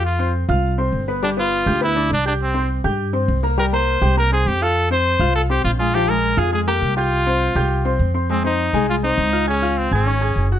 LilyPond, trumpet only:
\new Staff \with { instrumentName = "Trumpet" } { \time 4/4 \key f \minor \tempo 4 = 204 f'4 r2. | d'8 f'4. e'4 d'8 d'8 | c'4 r2. | bes'8 c''4. bes'8 aes'8 g'8 a'8~ |
a'8 c''4. a'8 g'8 f'8 f'8 | g'8 bes'4 aes'8 aes'8 g'4 f'8~ | f'2. r4 | c'8 ees'4. f'8 ees'4. |
des'4 c'8 des'2 r8 | }